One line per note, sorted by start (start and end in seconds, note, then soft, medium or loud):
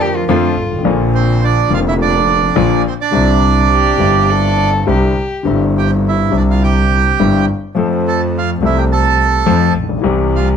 0.00 0.25 F2 medium
0.00 0.24 D3 medium
0.00 0.25 F3 medium
0.00 0.25 A3 medium
0.00 0.26 F4 medium
0.00 0.17 G4 medium
0.00 0.30 A#4 medium
0.16 0.28 F4 medium
0.28 0.52 F2 loud
0.28 0.53 F2 loud
0.28 0.53 D3 medium
0.28 0.53 F3 loud
0.28 0.53 A3 medium
0.28 0.96 F4 medium
0.28 0.53 F4 loud
0.28 0.96 A4 medium
0.58 0.85 G#1 medium
0.64 0.71 G1 medium
0.71 0.78 G#1 medium
0.78 0.86 A1 medium
0.83 1.67 A#1 medium
0.83 1.67 A#1 loud
0.83 1.67 A#2 loud
0.83 1.66 D3 medium
0.83 1.66 F3 medium
0.83 1.67 A#3 medium
0.87 1.68 F4 medium
1.14 1.41 C4 medium
1.14 1.44 C5 medium
1.44 1.70 D4 medium
1.44 1.73 D5 loud
1.69 2.52 F1 medium
1.69 2.52 F1 loud
1.69 2.52 F2 medium
1.69 2.51 D3 medium
1.69 2.52 F3 medium
1.69 2.52 A#3 medium
1.69 2.53 F4 medium
1.74 1.80 F4 medium
1.74 1.80 F5 loud
1.88 1.94 E4 medium
1.88 1.94 E5 loud
2.02 2.83 D4 medium
2.02 2.82 D5 loud
2.55 2.81 A#1 loud
2.55 2.80 A#2 loud
2.55 2.80 D3 medium
2.55 2.80 F3 medium
2.55 2.80 A#3 medium
2.55 2.81 F4 loud
2.88 2.94 C4 medium
2.88 2.94 C5 medium
3.01 4.70 D4 medium
3.01 4.70 D5 loud
3.11 3.95 C2 medium
3.11 3.96 C2 loud
3.11 3.96 C3 medium
3.11 3.94 D3 medium
3.11 3.95 G3 medium
3.11 3.96 C4 medium
3.15 3.97 E4 medium
3.72 4.32 G4 medium
3.97 4.83 G1 medium
3.97 4.83 G2 medium
3.97 4.82 D3 medium
3.97 4.82 G3 medium
3.97 4.83 C4 medium
3.97 4.84 E4 medium
4.30 4.88 A4 loud
4.87 5.12 C2 medium
4.87 5.12 C3 medium
4.87 5.12 D3 medium
4.87 5.12 G3 medium
4.87 5.12 C4 medium
4.87 5.12 E4 medium
4.87 5.57 G4 medium
5.43 6.29 G1 medium
5.43 6.29 G1 loud
5.43 6.29 G2 medium
5.43 6.28 D3 medium
5.43 6.28 G3 medium
5.43 6.29 C4 medium
5.43 6.30 E4 medium
5.78 5.90 G4 medium
5.78 5.91 G5 medium
6.08 6.33 E4 medium
6.08 6.37 E5 medium
6.30 7.15 C2 medium
6.30 7.16 C2 medium
6.30 7.15 C3 medium
6.30 7.14 D3 medium
6.30 7.15 G3 medium
6.30 7.15 C4 medium
6.30 7.16 E4 medium
6.37 6.43 D4 medium
6.37 6.43 D5 medium
6.50 6.63 F4 medium
6.50 6.63 F5 medium
6.63 7.46 G4 medium
6.63 7.45 G5 loud
7.19 7.44 G1 medium
7.19 7.44 G2 loud
7.19 7.44 D3 medium
7.19 7.44 G3 medium
7.19 7.44 C4 medium
7.19 7.44 E4 medium
7.75 8.58 F2 medium
7.75 8.59 F3 medium
7.75 8.58 A3 medium
7.75 8.59 C4 medium
7.75 8.59 A4 medium
8.08 8.20 A4 medium
8.08 8.22 A5 medium
8.38 8.50 F4 medium
8.38 8.50 F5 medium
8.61 9.44 C2 medium
8.61 9.44 C3 medium
8.61 9.43 F3 medium
8.61 9.43 A3 medium
8.61 9.44 C4 medium
8.61 9.45 A4 medium
8.65 8.77 E4 medium
8.65 8.79 E5 medium
8.78 8.85 G4 medium
8.78 8.84 G5 medium
8.92 9.73 A4 medium
8.92 9.73 A5 loud
9.46 9.71 F2 loud
9.46 9.72 F2 loud
9.46 9.71 F3 loud
9.46 9.71 A3 medium
9.46 9.71 C4 medium
9.46 9.71 A4 medium
9.77 10.04 A#1 medium
9.83 9.90 A1 medium
9.89 9.97 A#1 medium
9.97 10.05 B1 medium
10.02 10.57 C2 loud
10.02 10.57 C2 medium
10.02 10.57 C3 medium
10.02 10.57 E3 medium
10.02 10.57 G3 medium
10.02 10.57 C4 medium
10.06 10.57 G4 medium
10.36 10.49 F4 medium
10.36 10.48 F5 medium